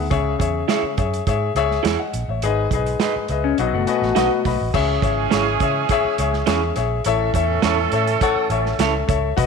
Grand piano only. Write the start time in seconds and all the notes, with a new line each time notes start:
0.10 C#3 G#4 C#5 E5
0.39 G#4 C#5 E5
0.69 G#4 C#5 E5
0.98 G#4 C#5 E5
1.27 G#4 C#5 E5
1.56 G#4 C#5 E5
1.85 G#5
1.99 D#5 F#5
2.29 C#5 E5
2.43 G#2 G#4 B4 D#5
2.73 G#4 B4 D#5
3.01 G#4 B4 D#5
3.30 G#4 B4 D#5 E5
3.59 B2 F#4 B4 D#5 F#5
3.87 F#4 B4 D#5 G#5
4.16 F#4 B4 D#5 F#5
4.45 F#4 B4 D#5 B5
4.74 C#3 G#4 C#5 E5
5.02 G#4 C#5 E5
5.33 G#4 C#5 E5
5.60 G#4 C#5 E5
5.91 G#4 C#5 E5
6.19 G#4 C#5 E5
6.48 G#4 C#5 E5
6.76 G#4 C#5 E5
7.06 A2 A4 C#5 E5
7.35 A4 C#5 E5
7.63 A4 C#5 E5
7.93 A4 C#5 E5
8.22 A4 C#5 F#5
8.50 A4 C#5 E5
8.79 A4 C#5 E5
9.08 A4 C#5 E5
9.37 B2 F#4 B4 D#5